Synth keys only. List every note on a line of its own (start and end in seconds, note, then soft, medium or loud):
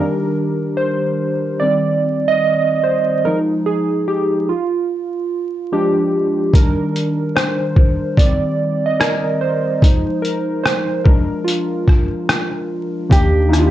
0.00 0.55 D#3 soft
0.00 0.55 G3 soft
0.00 0.56 D4 medium
0.00 0.21 G4 medium
0.00 0.80 A#4 medium
0.77 1.62 C5 medium
1.60 2.80 D#3 soft
1.60 2.80 G3 soft
1.60 2.80 C4 medium
1.60 2.30 D5 medium
2.28 2.85 D#5 medium
2.84 2.98 C5 medium
3.25 4.44 F3 soft
3.25 4.45 G#3 soft
3.25 4.45 D#4 medium
3.25 3.39 A#4 medium
3.66 4.08 G#4 medium
4.08 4.50 G4 medium
4.49 5.27 F4 medium
5.72 6.31 F3 medium
5.72 6.31 G#3 soft
5.72 6.31 D4 medium
5.72 6.57 G4 medium
6.55 7.73 D#3 medium
6.55 7.73 G3 soft
6.55 7.74 D4 medium
6.55 7.39 A#4 medium
7.36 8.20 C5 medium
8.18 9.78 D#3 soft
8.18 9.79 G3 soft
8.18 9.79 C4 soft
8.18 8.87 D5 medium
8.86 9.01 D#5 medium
9.00 9.42 A#4 medium
9.41 10.26 C5 medium
9.82 11.02 F3 medium
9.82 11.02 G#3 soft
9.82 11.02 D#4 medium
10.22 10.65 A#4 medium
10.63 11.06 C5 medium
11.04 11.65 F3 soft
11.04 11.65 G#3 soft
11.04 11.65 D4 medium
11.04 11.47 A#4 medium
11.44 12.65 F4 medium
13.09 13.43 D#3 medium
13.09 13.44 A#3 medium
13.09 13.44 D4 medium
13.09 13.45 G4 medium
13.49 13.71 A#3 medium
13.49 13.71 D4 medium
13.49 13.71 D#4 medium
13.49 13.60 E4 medium
13.58 13.71 F4 medium